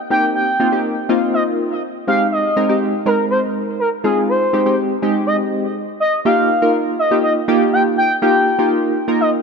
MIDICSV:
0, 0, Header, 1, 3, 480
1, 0, Start_track
1, 0, Key_signature, -3, "major"
1, 0, Tempo, 491803
1, 105, Time_signature, 4, 2, 24, 8
1, 9197, End_track
2, 0, Start_track
2, 0, Title_t, "Analog synth lead"
2, 0, Program_c, 0, 81
2, 104, Note_on_c, 0, 79, 99
2, 294, Note_off_c, 0, 79, 0
2, 345, Note_on_c, 0, 79, 81
2, 796, Note_off_c, 0, 79, 0
2, 1303, Note_on_c, 0, 75, 80
2, 1398, Note_off_c, 0, 75, 0
2, 2026, Note_on_c, 0, 77, 99
2, 2215, Note_off_c, 0, 77, 0
2, 2265, Note_on_c, 0, 75, 78
2, 2717, Note_off_c, 0, 75, 0
2, 2985, Note_on_c, 0, 70, 93
2, 3174, Note_off_c, 0, 70, 0
2, 3224, Note_on_c, 0, 72, 86
2, 3319, Note_off_c, 0, 72, 0
2, 3704, Note_on_c, 0, 70, 81
2, 3799, Note_off_c, 0, 70, 0
2, 3941, Note_on_c, 0, 68, 94
2, 4132, Note_off_c, 0, 68, 0
2, 4185, Note_on_c, 0, 72, 82
2, 4636, Note_off_c, 0, 72, 0
2, 5140, Note_on_c, 0, 75, 83
2, 5237, Note_off_c, 0, 75, 0
2, 5858, Note_on_c, 0, 75, 102
2, 6050, Note_off_c, 0, 75, 0
2, 6104, Note_on_c, 0, 77, 80
2, 6556, Note_off_c, 0, 77, 0
2, 6820, Note_on_c, 0, 75, 86
2, 7012, Note_off_c, 0, 75, 0
2, 7059, Note_on_c, 0, 75, 80
2, 7156, Note_off_c, 0, 75, 0
2, 7542, Note_on_c, 0, 79, 77
2, 7638, Note_off_c, 0, 79, 0
2, 7783, Note_on_c, 0, 79, 102
2, 7973, Note_off_c, 0, 79, 0
2, 8025, Note_on_c, 0, 79, 85
2, 8476, Note_off_c, 0, 79, 0
2, 8984, Note_on_c, 0, 75, 80
2, 9079, Note_off_c, 0, 75, 0
2, 9197, End_track
3, 0, Start_track
3, 0, Title_t, "Synth keys"
3, 0, Program_c, 1, 88
3, 101, Note_on_c, 1, 58, 72
3, 102, Note_on_c, 1, 60, 67
3, 104, Note_on_c, 1, 63, 67
3, 106, Note_on_c, 1, 67, 82
3, 419, Note_off_c, 1, 58, 0
3, 419, Note_off_c, 1, 60, 0
3, 420, Note_off_c, 1, 63, 0
3, 421, Note_off_c, 1, 67, 0
3, 582, Note_on_c, 1, 58, 80
3, 584, Note_on_c, 1, 60, 71
3, 586, Note_on_c, 1, 63, 74
3, 588, Note_on_c, 1, 65, 89
3, 663, Note_off_c, 1, 58, 0
3, 663, Note_off_c, 1, 60, 0
3, 664, Note_off_c, 1, 63, 0
3, 665, Note_off_c, 1, 65, 0
3, 702, Note_on_c, 1, 58, 71
3, 704, Note_on_c, 1, 60, 69
3, 706, Note_on_c, 1, 63, 66
3, 707, Note_on_c, 1, 67, 78
3, 940, Note_off_c, 1, 58, 0
3, 941, Note_off_c, 1, 60, 0
3, 942, Note_off_c, 1, 63, 0
3, 942, Note_off_c, 1, 67, 0
3, 1065, Note_on_c, 1, 58, 88
3, 1065, Note_on_c, 1, 60, 78
3, 1067, Note_on_c, 1, 63, 76
3, 1069, Note_on_c, 1, 65, 96
3, 1695, Note_off_c, 1, 60, 0
3, 1696, Note_off_c, 1, 58, 0
3, 1696, Note_off_c, 1, 63, 0
3, 1697, Note_off_c, 1, 65, 0
3, 2025, Note_on_c, 1, 56, 74
3, 2027, Note_on_c, 1, 60, 70
3, 2029, Note_on_c, 1, 63, 72
3, 2031, Note_on_c, 1, 67, 82
3, 2340, Note_off_c, 1, 56, 0
3, 2341, Note_off_c, 1, 60, 0
3, 2342, Note_off_c, 1, 63, 0
3, 2343, Note_off_c, 1, 67, 0
3, 2503, Note_on_c, 1, 56, 81
3, 2505, Note_on_c, 1, 60, 73
3, 2506, Note_on_c, 1, 63, 76
3, 2506, Note_on_c, 1, 70, 86
3, 2583, Note_off_c, 1, 56, 0
3, 2584, Note_off_c, 1, 60, 0
3, 2585, Note_off_c, 1, 63, 0
3, 2585, Note_off_c, 1, 70, 0
3, 2625, Note_on_c, 1, 56, 71
3, 2626, Note_on_c, 1, 60, 70
3, 2628, Note_on_c, 1, 63, 64
3, 2629, Note_on_c, 1, 67, 84
3, 2861, Note_off_c, 1, 56, 0
3, 2862, Note_off_c, 1, 60, 0
3, 2863, Note_off_c, 1, 63, 0
3, 2864, Note_off_c, 1, 67, 0
3, 2984, Note_on_c, 1, 56, 72
3, 2984, Note_on_c, 1, 60, 64
3, 2987, Note_on_c, 1, 63, 66
3, 2989, Note_on_c, 1, 70, 80
3, 3615, Note_off_c, 1, 56, 0
3, 3615, Note_off_c, 1, 60, 0
3, 3617, Note_off_c, 1, 63, 0
3, 3618, Note_off_c, 1, 70, 0
3, 3942, Note_on_c, 1, 56, 76
3, 3944, Note_on_c, 1, 60, 70
3, 3946, Note_on_c, 1, 63, 66
3, 3947, Note_on_c, 1, 65, 88
3, 4259, Note_off_c, 1, 56, 0
3, 4260, Note_off_c, 1, 60, 0
3, 4261, Note_off_c, 1, 63, 0
3, 4261, Note_off_c, 1, 65, 0
3, 4424, Note_on_c, 1, 56, 78
3, 4425, Note_on_c, 1, 60, 74
3, 4426, Note_on_c, 1, 63, 76
3, 4429, Note_on_c, 1, 67, 85
3, 4503, Note_off_c, 1, 56, 0
3, 4504, Note_off_c, 1, 60, 0
3, 4505, Note_off_c, 1, 63, 0
3, 4506, Note_off_c, 1, 67, 0
3, 4544, Note_on_c, 1, 56, 72
3, 4546, Note_on_c, 1, 60, 70
3, 4548, Note_on_c, 1, 63, 68
3, 4550, Note_on_c, 1, 67, 81
3, 4781, Note_off_c, 1, 56, 0
3, 4782, Note_off_c, 1, 60, 0
3, 4783, Note_off_c, 1, 63, 0
3, 4784, Note_off_c, 1, 67, 0
3, 4903, Note_on_c, 1, 56, 84
3, 4903, Note_on_c, 1, 60, 76
3, 4904, Note_on_c, 1, 63, 81
3, 4907, Note_on_c, 1, 67, 92
3, 5534, Note_off_c, 1, 56, 0
3, 5534, Note_off_c, 1, 60, 0
3, 5535, Note_off_c, 1, 63, 0
3, 5536, Note_off_c, 1, 67, 0
3, 6102, Note_on_c, 1, 58, 81
3, 6103, Note_on_c, 1, 63, 73
3, 6104, Note_on_c, 1, 65, 68
3, 6106, Note_on_c, 1, 67, 89
3, 6340, Note_off_c, 1, 58, 0
3, 6341, Note_off_c, 1, 63, 0
3, 6341, Note_off_c, 1, 65, 0
3, 6342, Note_off_c, 1, 67, 0
3, 6460, Note_on_c, 1, 58, 74
3, 6460, Note_on_c, 1, 63, 70
3, 6463, Note_on_c, 1, 65, 69
3, 6464, Note_on_c, 1, 70, 84
3, 6778, Note_off_c, 1, 58, 0
3, 6778, Note_off_c, 1, 63, 0
3, 6779, Note_off_c, 1, 65, 0
3, 6780, Note_off_c, 1, 70, 0
3, 6940, Note_on_c, 1, 58, 75
3, 6942, Note_on_c, 1, 63, 68
3, 6944, Note_on_c, 1, 65, 71
3, 6944, Note_on_c, 1, 67, 86
3, 7179, Note_off_c, 1, 58, 0
3, 7180, Note_off_c, 1, 63, 0
3, 7181, Note_off_c, 1, 65, 0
3, 7181, Note_off_c, 1, 67, 0
3, 7300, Note_on_c, 1, 58, 96
3, 7302, Note_on_c, 1, 63, 86
3, 7303, Note_on_c, 1, 65, 86
3, 7305, Note_on_c, 1, 67, 105
3, 7776, Note_off_c, 1, 58, 0
3, 7776, Note_off_c, 1, 63, 0
3, 7777, Note_off_c, 1, 65, 0
3, 7778, Note_off_c, 1, 67, 0
3, 8022, Note_on_c, 1, 58, 80
3, 8024, Note_on_c, 1, 63, 74
3, 8025, Note_on_c, 1, 65, 75
3, 8026, Note_on_c, 1, 67, 90
3, 8260, Note_off_c, 1, 58, 0
3, 8261, Note_off_c, 1, 63, 0
3, 8262, Note_off_c, 1, 65, 0
3, 8262, Note_off_c, 1, 67, 0
3, 8380, Note_on_c, 1, 58, 81
3, 8380, Note_on_c, 1, 63, 73
3, 8382, Note_on_c, 1, 65, 76
3, 8385, Note_on_c, 1, 67, 86
3, 8698, Note_off_c, 1, 58, 0
3, 8698, Note_off_c, 1, 63, 0
3, 8699, Note_off_c, 1, 65, 0
3, 8700, Note_off_c, 1, 67, 0
3, 8860, Note_on_c, 1, 58, 77
3, 8861, Note_on_c, 1, 63, 70
3, 8863, Note_on_c, 1, 65, 68
3, 8865, Note_on_c, 1, 70, 84
3, 9099, Note_off_c, 1, 58, 0
3, 9100, Note_off_c, 1, 63, 0
3, 9100, Note_off_c, 1, 65, 0
3, 9101, Note_off_c, 1, 70, 0
3, 9197, End_track
0, 0, End_of_file